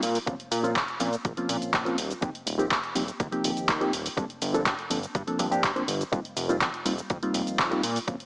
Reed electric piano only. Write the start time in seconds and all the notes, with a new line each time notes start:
0.26 F3 A#3 C4 C#4 F4
0.63 F3 A#3 C4 C#4 F4
1.00 F3 A#3 C4 C#4 F4
1.37 F3 A#3 C4 C#4 F4
1.85 F3 A#3 C4 C#4 F4
2.21 F3 A#3 C4 D#4 G4
2.58 F3 A#3 C4 D#4 G4
2.95 F3 A#3 C4 D#4 G4
3.31 F3 A#3 C4 D#4 G4
3.81 F3 A#3 C4 D#4 G4
4.17 F3 A#3 C4 D4 A4
4.53 F3 A#3 C4 D4 A4
4.90 F3 A#3 C4 D4 A4
5.27 F3 A#3 C4 D4 A4
5.39 F3 A#3 C4 D4 G4
5.51 F3 A#3 C4 D4 G4
5.75 F3 A#3 C4 D4 C5
6.12 G3 A#3 C4 D#4 F4
6.49 G3 A#3 C4 D#4 F4
6.85 G3 A#3 C4 D#4 F4
7.22 G3 A#3 C4 D#4 F4
7.71 G3 A#3 C4 D#4 F4
8.07 F3 A#3 C4 C#4 F4